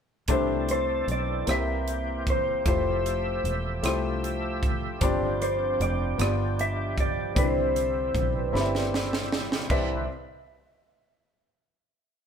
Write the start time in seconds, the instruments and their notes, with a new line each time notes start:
0.28 fingered electric bass C2, tonewheel organ E3 C4 D4 A4, grand piano A3 C4 D4 E4 G4 C5, kick, closed hi-hat
0.69 clean electric guitar C5, closed hi-hat
1.08 fingered electric bass B1, clean electric guitar D5, closed hi-hat
1.46 fingered electric bass C2, grand piano C3 A#3 C4 E4 G4 C5, tonewheel organ A#3 G4, cross-stick, closed hi-hat
1.51 clean electric guitar E5
1.88 closed hi-hat
2.27 clean electric guitar C5, kick, closed hi-hat
2.65 fingered electric bass F1, tonewheel organ F3 A3 G4 E5, grand piano A3 E4 F4 G4 C5, clean electric guitar C5, kick, closed hi-hat
3.06 closed hi-hat
3.44 fingered electric bass E1, closed hi-hat
3.82 fingered electric bass C2, grand piano A3 E4 F4 G4 C5, cross-stick, closed hi-hat
4.24 closed hi-hat
4.63 kick, closed hi-hat
5.01 fingered electric bass G1, grand piano G2 C4 D4 F4 G4 D5, tonewheel organ F3 C4 D4, kick, closed hi-hat
5.42 clean electric guitar C5, closed hi-hat
5.80 fingered electric bass F1, clean electric guitar D5, closed hi-hat
6.18 fingered electric bass G1, grand piano G2 B3 D4 F4 G4 D5, tonewheel organ G3 D4, cross-stick, closed hi-hat
6.59 clean electric guitar E5, closed hi-hat
6.98 clean electric guitar D5, kick, closed hi-hat
7.35 fingered electric bass C2, grand piano D3 C4 D4 G4 D5 B5, tonewheel organ D3 C4 E4, clean electric guitar C5, kick, closed hi-hat
7.42 grand piano E4
7.76 closed hi-hat
8.15 fingered electric bass B1, kick, cross-stick, closed hi-hat
8.35 clean electric guitar B4
8.52 fingered electric bass G1, grand piano C4 E4 G4 D5 B5, snare
8.61 grand piano E5
8.75 snare
8.94 snare
9.13 snare
9.32 snare
9.52 snare
9.69 fingered electric bass C2, grand piano C2 C4 E4 G4 B4 D5, tonewheel organ D3 C4 E4 B4, clean electric guitar E5, kick, crash